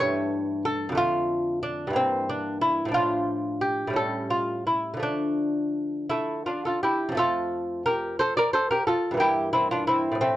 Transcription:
lute
Already playing: G2 E3 A3
0.00 C#5
0.65 A4
0.89 F2 D3
0.95 A3 F4
1.63 D4
1.87 G2 E3
1.93 A#3 C4
2.29 D4
2.61 E4
2.85 A2 F3
2.92 D4 F4
3.61 G4
3.87 A2 G3
3.93 C#4 A4
4.30 F4
4.67 E4
4.94 D3 F3
5.00 A3 D4
6.10 A3 E4
6.46 D4 F4
6.65 F4 A4
6.83 E4 G4
7.09 F2 F3
7.15 A3 F4 A4
7.86 G4 A#4
8.19 A4 C5
8.37 A#4 D5
8.53 A4 C5
8.71 G4 A#4
8.87 F4 A4
9.11 G2 E3
9.17 A#3 E4 G4
9.53 C4 E4
9.71 D4 F4
9.87 C4 E4
10.11 A2 F3
10.21 A3 C4

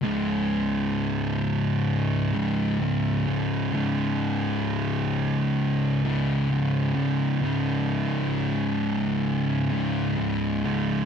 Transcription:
distorted electric guitar
0.01 C#2 G#2 C#3
2.33 C#2 G#2 C#3
2.80 C#2 G#2 C#3
3.28 C#2 G#2 C#3
3.72 C#2 G#2 C#3
6.03 C#2 G#2 C#3
6.50 C#2 G#2 C#3
6.95 C#2 G#2 C#3
7.42 C#2 G#2 C#3
9.71 C#2 G#2 C#3
10.17 C#2 G#2 C#3
10.64 C#2 G#2 C#3

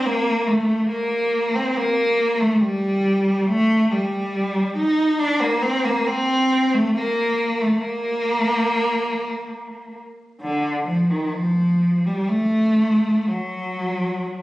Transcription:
cello
0.05 A#3
0.47 A3
0.89 A#3
1.55 C4
1.77 A#3
2.40 A3
2.61 G3
3.46 A3
3.92 G3
4.77 D#4
5.19 D4
5.41 A#3
5.62 C4
5.85 A#3
6.07 C4
6.73 A3
6.96 A#3
7.61 A3
7.80 A#3
10.41 D3
10.87 F3
11.10 D#3
11.34 F3
12.06 G3
12.28 A3
13.28 F#3

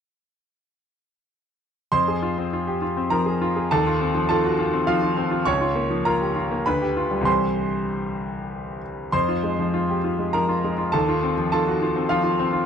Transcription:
grand piano
1.92 F2 C5 C6
2.08 G#4
2.23 F4
2.38 C4
2.53 F4
2.67 G4
2.82 F4
2.97 C4
3.10 F3 A#4 A#5
3.26 G#4
3.42 F4
3.56 G#4
3.71 D#2 A4 A5
3.87 F4
4.01 C4
4.14 F3
4.29 F4 A4 A5
4.45 F#4
4.59 F4
4.73 C4
4.87 F3 F4 F5
5.02 F4
5.17 C4
5.31 F4
5.45 C#2 C#5 C#6
5.61 F4
5.75 A#3
5.90 F3
6.05 F4 A#4 A#5
6.21 G4
6.36 F4
6.51 A#3
6.66 D2 B4 B5
6.82 G4
6.97 F4
7.11 G3
7.21 C2 E3 G3 G4
7.25 C5 C6
9.12 F2 C5 C6
9.29 F4
9.43 G#3
9.59 F3
9.74 F4
9.90 G4
10.04 F4
10.19 G#3
10.33 F3 A#4 A#5
10.49 F4
10.64 G#3
10.78 F4
10.92 D#2 A4 A5
11.09 F4
11.23 C4
11.37 F3
11.52 F4 A4 A5
11.68 F#4
11.82 F4
11.96 C4
12.09 F3 F4 F5
12.24 F4
12.39 C4
12.53 F4

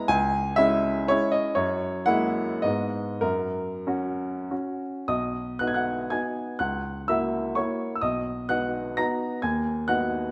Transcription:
grand piano
0.08 C#2 G#5
0.56 G#3 C#4 E4 E5
1.08 G#3 C#4 E4 C#5
1.32 D#5
1.55 F#2 C#5
2.06 G#3 A#3 E4 F#5
2.62 G#2 G#3 B3 D#4 D#5
3.21 F#2 A#4
3.87 C#4 F#4
4.51 C#4 F#4
5.08 B1 D#5 D#6
5.59 B3 D#4 F#4 F#6
5.67 G#6
5.74 F#5 F#6
6.10 B3 D#4 F#4 G#5 G#6
6.59 C#2 F#5 F#6
7.08 A#3 E4 F#4 E5 E6
7.55 A#3 E4 F#4 C#5 C#6
7.95 E6
8.01 B1 D#5 D#6
8.49 B3 D#4 F#4 F#5 F#6
8.97 B3 D#4 F#4 A#5 A#6
9.42 D#2 G#5 G#6
9.88 B3 D#4 F#4 F#5 F#6

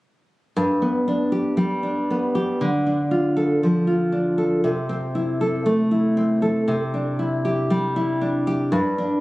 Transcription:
nylon-string guitar
0.57 G2
0.82 B3
1.08 D4
1.32 G4
1.57 G3
1.83 D4
2.10 B3
2.35 G4
2.61 D3
2.86 D4
3.11 F4
3.37 A4
3.63 F3
3.87 F4
4.12 D4
4.38 A4
4.64 C3
4.89 C4
5.15 E4
5.41 A4
5.66 A3
5.91 E4
6.17 C4
6.42 A4
6.68 C3
6.94 D4
7.19 E4
7.45 G4
7.70 G3
7.96 E4
8.21 D4
8.47 G4
8.72 G2
8.98 D4

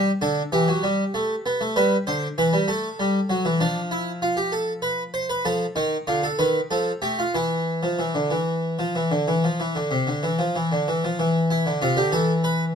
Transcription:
harpsichord
0.21 D3 A4
0.52 E3 G4
0.68 F#3
0.83 G3
1.14 A3
1.46 B3
1.61 A3
1.76 G3 B4
2.07 D3 C5
2.38 E3 B4
2.53 G3
2.68 A3 A4
2.99 G3
3.30 F#3
3.45 E3
3.60 F3 D4
3.91 E4
4.22 F4
4.37 G4
4.52 A4
4.82 B4
5.14 C5
5.30 B4
5.45 F3 A4
5.76 D#3 D#4
6.07 D3 F4
6.23 A4
6.39 D#3 B4
6.71 F3 A4
7.02 A3 G4
7.19 F4
7.35 E3 E4
7.83 F3
7.99 E3
8.15 D3
8.31 E3
8.79 F3
8.95 E3
9.11 D3
9.28 E3
9.44 F3
9.60 E3
9.75 D3
9.91 C3
10.07 D3
10.23 E3
10.39 F3
10.56 E3
10.72 D3
10.88 E3
11.04 F3
11.19 E3
11.51 E4
11.66 D3
11.82 C3 F4
11.96 D3 G4
12.12 E3 A4
12.44 B4

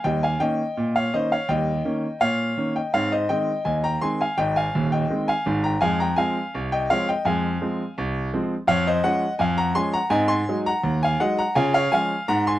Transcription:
grand piano
0.04 D#2 G3 D#5 G5
0.23 F5 G#5
0.40 D#3 A#3 C#4 D#5 G5
0.77 A#2
0.96 C#5 F5
1.14 D#3 A#3 C#4 C5 D#5
1.32 C#5 F5
1.49 D#2 G3 D#5 G5
1.85 D#3 A#3 C#4
2.21 A#2 C#5 F5
2.57 D#3 A#3 C#4
2.76 D#5 G5
2.94 G#2 C4 C#5 F5
3.12 C5 D#5
3.29 D#3 G#3 C4 D#5 G5
3.65 D#2 D#5 G#5
3.84 G5 A#5
4.01 D#3 G#3 C4 G#5 C6
4.21 F5 G#5
4.38 G#1 G#2 D#5 G5
4.56 F5 G#5
4.75 D#1 D#2
4.92 D#5 G5
5.10 D#3 G#3 C4
5.28 F5 G#5
5.46 G#1 G#2
5.64 G5 A#5
5.81 F2 G#3 F5 G#5
6.00 G5 A#5
6.16 F3 G#3 C4 F5 G#5
6.54 C2
6.72 D#5 G5
6.90 F3 G#3 C4 C#5 F5
7.09 D#5 G5
7.25 F2 G#3 F5 G#5
7.61 F3 G#3 C4
7.98 C2
8.33 F3 G#3 C4
8.67 F2 C#5 F5
8.87 C5 D#5
9.04 F3 G#3 C#4 D#5 F#5
9.39 F2 F5 G#5
9.58 F#5 A#5
9.75 F3 G#3 C#4 G#5 C6
9.94 F#5 A#5
10.10 G#2 C4 D#5 G#5
10.28 G#5 C6
10.48 F#3 G#3 D#4
10.66 F#5 A#5
10.84 D#2
11.03 F5 G#5
11.20 F#3 G#3 D#4 D#5 F#5
11.39 F#5 A#5
11.55 C#3 F4 F5 G#5
11.74 C#5 F5
11.92 F3 G#3 C#4 F5 G#5
12.28 G#2 F#5 A#5
12.47 G#5 C6

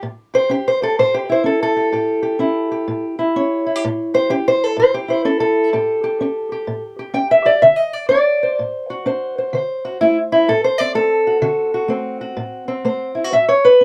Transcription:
steel-string acoustic guitar
0.03 A2
0.34 G4 C5
0.49 C#4 G4
0.68 C5
0.82 G4 A4
0.99 A2 C5
1.14 G4
1.29 E4 C5
1.44 C#4 A4
1.63 A4
1.77 G4
1.92 A2 G4
2.23 G4
2.39 C#4 E4
2.72 G4
2.88 A2
3.19 E4
3.36 C#4 C#5
3.66 E4
3.76 G4
3.85 A2
4.14 G4 C5
4.30 C#4 G4
4.48 C5
4.64 A4
4.77 A2 C5
4.94 G4
5.08 E4 C5
5.25 C#4 A4
5.40 A4
5.73 A2 G4
6.04 G4
6.21 C#4 G4
6.52 G4
6.67 A2
6.99 G4
7.14 C#4 G5
7.31 E5
7.45 G4 D5
7.62 D3 E5
7.76 D#5
7.93 D5
8.09 D4 D5
8.43 C5
8.59 A2
8.90 F#4
9.06 D4 C5
9.38 C5
9.53 D3 C5
9.85 F#4
10.01 A3 E4
10.32 E4
10.48 A2 A4
10.64 C5
10.78 C4 D5
10.95 A3 A4
11.27 F#4
11.42 D3 F#4
11.74 F#4
11.88 A3 C4
12.21 F#4
12.37 A2
12.68 C4
12.85 A3 C5
13.15 E4
13.24 F#4
13.32 A2 E5
13.49 C#5
13.65 B4
13.81 C#4

